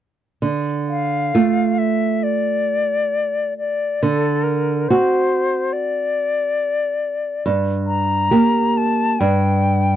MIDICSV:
0, 0, Header, 1, 3, 480
1, 0, Start_track
1, 0, Key_signature, -1, "minor"
1, 0, Tempo, 909091
1, 228, Time_signature, 4, 2, 24, 8
1, 1662, Tempo, 860832
1, 4062, Tempo, 882353
1, 5428, End_track
2, 0, Start_track
2, 0, Title_t, "Flute"
2, 0, Program_c, 0, 73
2, 469, Note_on_c, 0, 77, 53
2, 941, Note_on_c, 0, 76, 51
2, 949, Note_off_c, 0, 77, 0
2, 1179, Note_on_c, 0, 74, 53
2, 1187, Note_off_c, 0, 76, 0
2, 1901, Note_off_c, 0, 74, 0
2, 1904, Note_on_c, 0, 74, 50
2, 2155, Note_on_c, 0, 69, 49
2, 2163, Note_off_c, 0, 74, 0
2, 2379, Note_on_c, 0, 70, 47
2, 2387, Note_off_c, 0, 69, 0
2, 2631, Note_on_c, 0, 72, 52
2, 2639, Note_off_c, 0, 70, 0
2, 3101, Note_on_c, 0, 74, 55
2, 3110, Note_off_c, 0, 72, 0
2, 4057, Note_off_c, 0, 74, 0
2, 4289, Note_on_c, 0, 82, 63
2, 4781, Note_on_c, 0, 81, 61
2, 4789, Note_off_c, 0, 82, 0
2, 5011, Note_on_c, 0, 79, 61
2, 5019, Note_off_c, 0, 81, 0
2, 5428, Note_off_c, 0, 79, 0
2, 5428, End_track
3, 0, Start_track
3, 0, Title_t, "Nylon-string guitar"
3, 0, Program_c, 1, 24
3, 222, Note_on_c, 1, 50, 38
3, 693, Note_off_c, 1, 50, 0
3, 711, Note_on_c, 1, 57, 27
3, 712, Note_on_c, 1, 65, 32
3, 2128, Note_off_c, 1, 57, 0
3, 2128, Note_off_c, 1, 65, 0
3, 2151, Note_on_c, 1, 50, 37
3, 2617, Note_off_c, 1, 50, 0
3, 2641, Note_on_c, 1, 60, 30
3, 2641, Note_on_c, 1, 66, 33
3, 4043, Note_off_c, 1, 60, 0
3, 4043, Note_off_c, 1, 66, 0
3, 4064, Note_on_c, 1, 43, 45
3, 4525, Note_off_c, 1, 43, 0
3, 4530, Note_on_c, 1, 58, 35
3, 4530, Note_on_c, 1, 67, 41
3, 4989, Note_off_c, 1, 58, 0
3, 4989, Note_off_c, 1, 67, 0
3, 5016, Note_on_c, 1, 43, 48
3, 5428, Note_off_c, 1, 43, 0
3, 5428, End_track
0, 0, End_of_file